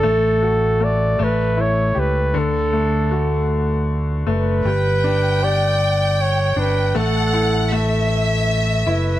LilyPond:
<<
  \new Staff \with { instrumentName = "Violin section" } { \time 6/8 \key d \major \tempo 4. = 52 r2. | r2. | g''2. | fis''4 e''2 | }
  \new Staff \with { instrumentName = "Flugelhorn" } { \time 6/8 \key d \major a'4 d''8 b'8 cis''8 b'8 | a'2 r8 b'8~ | b'4 d''4 cis''8 b'8 | a'4. r4 b'8 | }
  \new Staff \with { instrumentName = "Upright piano" } { \time 6/8 \key d \major a8 fis'8 a8 a8 e'8 g'8 | d8 a8 fis'4. a8 | g8 d'8 g'4. d'8 | a8 e'8 a4. e'8 | }
  \new Staff \with { instrumentName = "Fingered electric bass" } { \clef bass \time 6/8 \key d \major a,,4. a,,4 cis,8 | d,2~ d,8 fis,,8 | g,,2~ g,,8 g,,8 | a,,2~ a,,8 fis,,8 | }
>>